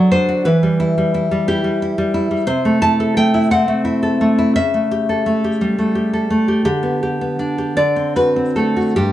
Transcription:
Already playing: D3 F#3 D4 F#4
0.12 D4 C5
0.29 F#4
0.45 E3 B4
0.63 G3
0.80 E4
0.98 G3
1.14 E4
1.31 G3
1.48 E4 G4
1.64 G3
1.82 E4
1.98 G3
2.14 E4
2.31 G3
2.47 C3 C5
2.65 A3
2.82 E4 A5
3.00 A4
3.17 A3 G5
3.34 E4
3.51 C4 F#5
3.68 A3
3.85 E4
4.03 A4
4.21 A3
4.38 E4
4.56 C#3 E5
4.74 A3
4.91 G4
5.09 A4
5.26 A3
5.44 G4
5.61 G3
5.78 A3
5.95 G4
6.13 A4
6.30 A3
6.48 G4
6.65 D3 G4
6.83 B3
7.03 G4
7.21 B3
7.39 D4
7.58 G4
7.77 D3 D5
7.96 C4
8.16 F#4 B4
8.36 C4
8.56 A3 A4
8.76 F#4
8.96 G2 G4

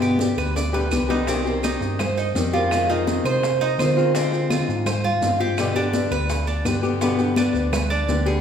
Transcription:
Already playing: G2 B2 D3 G3 B3 G4
0.02 G4, high bongo, maracas
0.19 D3 G3 B3 G4, high bongo, high conga, maracas
0.37 D2 B4, high bongo, claves, maracas
0.55 D5, muted nylon-string guitar stroke, high bongo, high conga, maracas
0.73 D3 G3 B3 G4 B4, high bongo, high conga, maracas
0.91 C2 D3 G3 B3 G4, low bongo, high conga, claves, maracas
1.09 D3 G3 B3 D#4 G4, low bongo, maracas
1.27 C3 D#3 G3 C4 G4, high bongo, high conga, maracas
1.45 D#3 G3 C4 G4, high bongo, high conga, maracas
1.63 D#3 G3 C4 D#4 G4, high bongo, high conga, claves, maracas
1.81 G2, high bongo, maracas
1.99 C5, muted nylon-string guitar stroke, high bongo, high conga, low conga, claves, maracas
2.17 D#4, high bongo, high conga, maracas
2.34 F2 D#3 G3 C4 G4, high bongo, low bongo, high conga, maracas
2.53 D#3 G3 C4 F4 G4, high conga, maracas
2.71 C3 D#3 G#3 C4 F4, high bongo, high conga, claves, maracas
2.89 D#3 G#3 C4 D#4 F4, high bongo, high conga, maracas
3.07 D#3 G#3 C4 F4, high bongo, high conga, maracas
3.25 C3 C5, high bongo, claves, maracas
3.43 muted nylon-string guitar stroke, high bongo, high conga, maracas
3.61 D#4, high bongo, high conga, maracas
3.78 D3 D#3 G#3 C4 F4 C5, high bongo, low bongo, high conga, claves, maracas
3.97 D#3 G#3 C4 F4, maracas
4.15 D3 G#3 C4 F4, high bongo, maracas
4.32 G#3 C4 F4, high bongo, high conga, maracas
4.50 D3 G#3 C4 F4, high bongo, high conga, claves, maracas
4.68 G#2, high bongo, maracas
4.86 C5, muted nylon-string guitar stroke, high bongo, high conga, low conga, claves, maracas
5.04 F4, high bongo, high conga, low conga, maracas
5.22 G2 D3 G#3 C4 F4, high bongo, low bongo, high conga, maracas
5.40 G#3 C4 F4 G4, high conga, maracas
5.58 B2 D3 G3 B3 G4, high bongo, high conga, claves, maracas
5.76 D3 G3 B3 D4 G4, high bongo, high conga, maracas
5.93 D3 G3 B3 G4, high bongo, high conga, maracas
6.11 D2 B4, high bongo, claves, maracas
6.29 muted nylon-string guitar stroke, high bongo, high conga, maracas
6.47 D4, high bongo, high conga, maracas
6.65 G2 D3 G3 B3 G4 B4, high bongo, low bongo, high conga, claves, maracas
6.83 D3 G3 B3 G4, high conga, maracas
7.01 B2 D3 G3 B3 G4, high bongo, high conga, maracas
7.19 D3 G3 B3 G4, high bongo, high conga, maracas
7.36 D3 G3 B3 D4 G4, high bongo, high conga, claves, maracas
7.54 D2, high bongo, maracas
7.72 B4, muted nylon-string guitar stroke, high bongo, high conga, low conga, claves, maracas
7.90 D4, high bongo, high conga, maracas
8.08 D2 D3 G3 B3 G4, high bongo, low bongo, high conga, maracas
8.26 D3 G3 B3 G4 G#4, high conga, maracas

